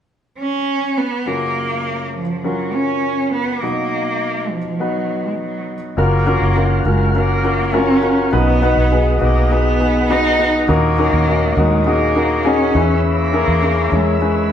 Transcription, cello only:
0.38 0.99 C#4 medium
0.97 1.28 B3 medium
1.27 2.15 A#3 medium
2.16 2.46 F3 medium
2.45 2.75 F#3 medium
2.73 3.32 C#4 medium
3.33 3.63 B3 medium
3.61 4.52 A#3 medium
4.50 4.81 F3 medium
4.80 5.26 F#3 medium
5.25 5.38 G#3 medium
5.39 5.80 F#3 medium
5.99 6.83 A#3 medium
6.88 7.14 G#3 medium
7.18 7.78 A#3 medium
7.76 8.19 C#4 medium
8.35 9.18 B3 medium
9.22 9.54 A#3 medium
9.52 10.12 B3 medium
10.11 10.54 D#4 medium
10.69 11.60 A#3 medium
11.58 11.88 G#3 medium
11.87 12.47 A#3 medium
12.46 12.90 C#4 medium
13.06 13.95 A#3 medium
13.94 14.22 G#3 medium
14.22 14.52 G#3 medium

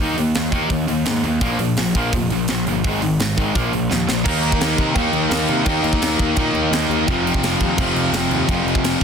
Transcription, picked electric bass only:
0.00 0.14 D#2 medium
0.17 0.32 D#2 medium
0.36 0.50 D#2 medium
0.52 0.67 D#2 medium
0.69 0.85 D#2 medium
0.88 1.03 D#2 medium
1.06 1.21 G#2 medium
1.23 1.39 D#2 medium
1.41 1.56 A#1 loud
1.59 1.74 A#1 medium
1.77 1.92 A#1 medium
1.95 2.10 A#1 medium
2.13 2.28 F1 loud
2.30 2.45 A#1 medium
2.49 2.64 A#1 loud
2.66 2.81 G1 medium
2.84 2.99 G#1 medium
3.02 3.17 G#1 medium
3.20 3.35 G#1 medium
3.38 3.53 G#1 medium
3.55 3.70 A#1 medium
3.73 3.88 A#1 medium
3.92 4.06 D#2 loud
4.08 4.23 A#1 medium
4.26 4.51 D#2 loud
4.61 4.74 D#2 medium
4.79 4.91 C3 medium
4.95 5.08 D#2 medium
5.13 5.26 D#2 medium
5.30 5.43 D#2 loud
5.49 5.62 C3 medium
5.66 5.79 D#2 loud
5.83 5.96 D#2 loud
6.01 6.14 D#2 medium
6.19 6.32 D#2 medium
6.37 6.50 A#2 medium
6.53 6.67 D#2 loud
6.71 6.84 D#2 loud
6.89 7.02 D#2 medium
7.08 7.33 F1 medium
7.41 7.55 F1 medium
7.60 7.73 D#2 medium
7.78 7.91 F1 loud
7.95 8.08 F1 medium
8.13 8.26 F1 loud
8.31 8.43 D#2 medium
8.49 8.61 F1 loud
8.65 8.78 F1 medium
8.82 8.95 F1 medium

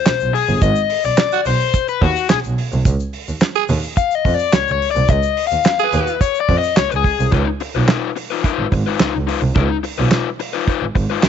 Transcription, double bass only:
0.06 0.11 B1 soft
0.21 0.29 B1 medium
0.49 0.57 G1 medium
0.62 0.70 G#1 loud
1.05 1.09 B1 medium
1.46 1.54 B1 medium
2.02 2.10 D#2 loud
2.31 2.35 B1 soft
2.45 2.53 B1 medium
2.73 2.81 C2 medium
2.86 2.94 C#2 loud
3.29 3.33 D#2 medium
3.69 3.77 D#2 loud
4.25 4.33 F2 medium
4.54 4.58 C#2 soft
4.68 4.76 C#2 medium
4.96 5.04 C2 medium
5.09 5.17 C#2 loud
5.52 5.56 D#2 medium
5.93 6.01 D#2 medium
6.49 6.57 F2 medium
6.77 6.82 C#2 soft
6.91 6.99 C#2 medium
7.19 7.27 C2 medium
7.33 7.41 C#2 loud
7.75 7.83 B1 medium
8.59 8.63 G#1 soft
8.72 8.80 G#1 loud
9.00 9.05 C#2 soft
9.15 9.23 C#2 medium
9.43 9.51 C2 medium
9.56 9.64 C#2 loud
9.99 10.07 B1 loud
10.82 10.87 G#1 soft
10.96 11.04 G#1 medium
11.23 11.28 C#2 soft

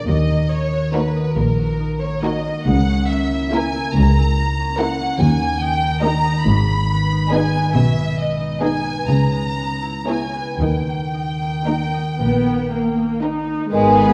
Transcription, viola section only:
0.94 1.26 A#3 soft
0.94 1.26 D#4 soft
2.23 2.56 A#3 soft
2.23 2.56 D#4 soft
3.53 3.86 A#3 medium
3.53 3.86 E4 soft
4.80 5.10 A#3 medium
4.80 5.10 E4 medium
6.04 6.36 A#3 medium
6.04 6.36 D#4 medium
7.32 7.65 B3 medium
7.32 7.65 D#4 medium
8.62 8.96 B3 soft
8.62 8.97 D#4 soft
10.09 10.48 B3 soft
10.09 10.48 E4 soft
11.67 12.06 A#3 soft
11.67 12.07 D#4 soft
12.19 12.68 B3 medium
12.71 13.23 A#3 soft
13.22 13.73 D#4 soft
13.72 14.13 G#3 soft
13.72 14.13 B3 soft

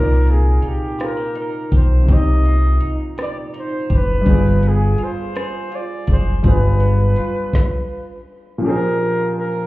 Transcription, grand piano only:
0.00 2.02 A#2 medium
0.00 2.03 C4 medium
0.00 2.05 D#4 medium
0.00 2.06 A#4 medium
0.00 2.11 D5 medium
2.04 4.20 C3 medium
2.04 4.21 C4 medium
2.09 4.23 D#4 soft
2.09 4.24 G4 medium
4.21 6.38 G3 medium
4.21 6.40 D4 medium
4.27 6.41 F4 medium
4.27 6.42 G#4 medium
4.33 6.44 D5 medium
6.43 7.53 G3 medium
6.43 7.53 D4 medium
6.43 7.54 F4 medium
6.47 7.55 G#4 medium
6.47 7.55 B4 medium
8.58 9.67 A#2 medium
8.58 9.67 F3 medium
8.58 8.69 C#4 soft
8.65 9.67 D4 medium
8.65 9.67 G4 medium
8.65 9.67 G#4 medium
8.69 9.67 C5 medium

